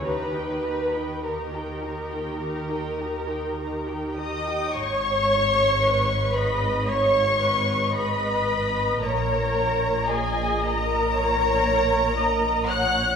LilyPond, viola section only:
\new Staff \with { instrumentName = "Viola section" } { \time 4/4 \key gis \minor \tempo 4 = 56 <dis' g'>16 <dis' g'>16 <dis' g'>16 <dis' g'>16 <dis' g'>16 <dis' g'>16 <dis' g'>16 <dis' g'>16 <dis' g'>16 <dis' g'>16 <dis' g'>16 <dis' g'>16 <dis' g'>16 <dis' g'>16 <dis' g'>16 <dis' g'>16 | cis''4 b'8 dis''8 cis''8 b'8 dis''4 | cis''4 dis''4 cis''4 dis''8 cis''8 | }